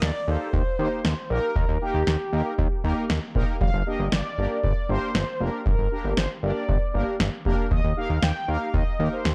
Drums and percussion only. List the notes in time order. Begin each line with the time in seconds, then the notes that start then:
0.02 snare
0.53 kick
1.05 snare
1.56 kick
2.07 snare
2.58 kick
3.10 snare
3.35 kick
3.61 kick
4.12 snare
4.64 kick
5.15 snare
5.66 kick
6.17 snare
6.69 kick
7.20 snare
7.45 kick
7.71 kick
8.22 snare
8.74 kick
9.25 snare